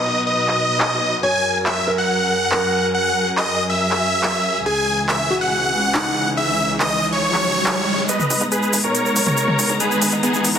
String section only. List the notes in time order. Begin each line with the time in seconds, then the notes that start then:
Already playing: B2 F#3 D#4 B4
1.23 F#2 G#4 A#4
4.66 C#2 C#3 E3
8.09 G#3 B3 D#4 A#5